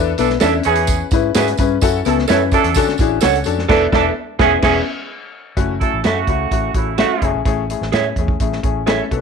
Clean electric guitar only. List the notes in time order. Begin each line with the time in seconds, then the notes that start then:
0.41 A4 D5 E5
1.35 G#4 B4 E5
2.28 A4 C#5 E5
3.21 A4 C#5 F#5
3.68 A4 D5 E5
3.92 A4 D5 E5
4.39 G#4 B4 E5
4.62 G#4 B4 E5
6.04 F#4 A4 E5
6.98 F#4 A4 E5
7.92 G#4 C#5 E5
8.87 G#4 C#5 E5